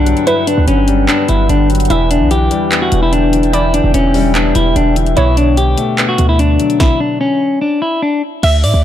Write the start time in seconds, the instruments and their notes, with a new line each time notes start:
Already playing: 808-style bass B1, grand piano G2 D3 G3 B3, clean electric guitar D4, ambient pad B4 F#5 G5
0.06 grand piano F#3, closed hi-hat
0.17 closed hi-hat
0.27 grand piano G2, clean electric guitar E4, synth pluck B4, closed hi-hat
0.47 grand piano D3, clean electric guitar D4, closed hi-hat
0.57 808-style bass D2
0.68 808-style bass G1, grand piano F#3, clean electric guitar C#4, closed hi-hat
0.88 grand piano G3, closed hi-hat
1.08 grand piano B3, clean electric guitar D4, clap, closed hi-hat
1.29 808-style bass G1, grand piano G2, clean electric guitar E4, closed hi-hat
1.49 808-style bass G1, grand piano D3, clean electric guitar D4, closed hi-hat
1.70 grand piano F#3, closed hi-hat
1.75 closed hi-hat
1.80 closed hi-hat
1.85 closed hi-hat
1.90 808-style bass E1, grand piano E2, clean electric guitar E4, ambient pad E5 G5, synth pluck E5, closed hi-hat
2.11 grand piano D3, clean electric guitar D4, closed hi-hat
2.21 808-style bass B1
2.31 grand piano E3, clean electric guitar G4, closed hi-hat
2.51 grand piano G3, closed hi-hat
2.72 grand piano B3, clap, closed hi-hat
2.82 clean electric guitar F#4
2.92 808-style bass E1, grand piano E2, closed hi-hat
3.03 clean electric guitar E4
3.13 grand piano D3, clean electric guitar D4, closed hi-hat
3.33 grand piano E3, closed hi-hat
3.43 closed hi-hat
3.53 grand piano E2, clean electric guitar E4, synth pluck D5, closed hi-hat
3.74 grand piano D3, clean electric guitar D4, closed hi-hat
3.84 808-style bass E1
3.94 808-style bass E1, grand piano E3, clean electric guitar C#4, closed hi-hat
4.14 grand piano G3, open hi-hat
4.35 grand piano B3, clean electric guitar D4, clap, closed hi-hat
4.55 808-style bass E1, grand piano E2, clean electric guitar E4, closed hi-hat
4.76 808-style bass E1, grand piano D3, clean electric guitar D4, closed hi-hat
4.96 grand piano E3, closed hi-hat
5.06 closed hi-hat
5.17 808-style bass B1, grand piano B2, clean electric guitar E4, synth pluck C#5, ambient pad F#5 A5, closed hi-hat
5.37 grand piano D3, clean electric guitar D4, closed hi-hat
5.57 clean electric guitar G4, closed hi-hat
5.78 grand piano A3, closed hi-hat
5.98 grand piano B3, clap, closed hi-hat
6.09 clean electric guitar F#4
6.18 808-style bass D2, grand piano B2, closed hi-hat
6.29 clean electric guitar E4
6.39 grand piano D3, clean electric guitar D4, closed hi-hat
6.60 grand piano F#3, closed hi-hat
6.70 closed hi-hat
6.80 clean electric guitar E4, kick, snare
7.00 clean electric guitar D4
7.21 clean electric guitar C#4
7.61 clean electric guitar D4
7.82 clean electric guitar E4
8.02 clean electric guitar D4
8.43 808-style bass D2, synth pluck E5, clean electric guitar E5, closed hi-hat, crash
8.64 808-style bass A2, clean electric guitar D5, open hi-hat
8.74 808-style bass D2